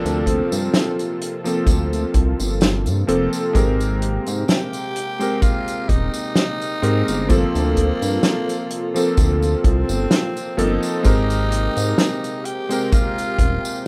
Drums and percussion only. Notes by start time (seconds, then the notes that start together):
0.05 closed hi-hat, tambourine
0.26 kick, closed hi-hat
0.52 closed hi-hat, tambourine
0.74 snare, closed hi-hat, tambourine
0.99 closed hi-hat, tambourine
1.21 closed hi-hat
1.45 closed hi-hat, tambourine
1.67 kick, closed hi-hat, tambourine
1.93 closed hi-hat, tambourine
2.14 kick, closed hi-hat
2.39 closed hi-hat, tambourine
2.61 snare, closed hi-hat, tambourine
2.86 closed hi-hat, tambourine
3.08 closed hi-hat
3.33 closed hi-hat, tambourine
3.55 kick, closed hi-hat, tambourine
3.80 closed hi-hat, tambourine
4.02 closed hi-hat
4.26 closed hi-hat, tambourine
4.48 snare, closed hi-hat, tambourine
4.73 closed hi-hat, tambourine
4.96 closed hi-hat
5.20 closed hi-hat, tambourine
5.42 kick, closed hi-hat, tambourine
5.67 closed hi-hat, tambourine
5.89 kick, closed hi-hat
6.14 closed hi-hat, tambourine
6.36 snare, closed hi-hat, tambourine
6.61 closed hi-hat, tambourine
6.83 closed hi-hat
7.08 closed hi-hat, tambourine
7.29 kick, closed hi-hat, tambourine
7.55 closed hi-hat, tambourine
7.76 kick, closed hi-hat
8.02 closed hi-hat, tambourine
8.23 snare, closed hi-hat, tambourine
8.49 closed hi-hat, tambourine
8.70 closed hi-hat
8.96 closed hi-hat, tambourine
9.17 kick, closed hi-hat, tambourine
9.42 closed hi-hat, tambourine
9.64 kick, closed hi-hat
9.89 closed hi-hat, tambourine
10.11 snare, closed hi-hat, tambourine
10.36 closed hi-hat, tambourine
10.58 closed hi-hat
10.83 closed hi-hat, tambourine
11.04 kick, closed hi-hat, tambourine
11.30 closed hi-hat, tambourine
11.52 closed hi-hat
11.76 closed hi-hat, tambourine
11.98 snare, closed hi-hat, tambourine
12.24 closed hi-hat, tambourine
12.45 closed hi-hat
12.70 closed hi-hat, tambourine
12.92 kick, closed hi-hat, tambourine
13.18 closed hi-hat, tambourine
13.39 kick, closed hi-hat
13.65 closed hi-hat, tambourine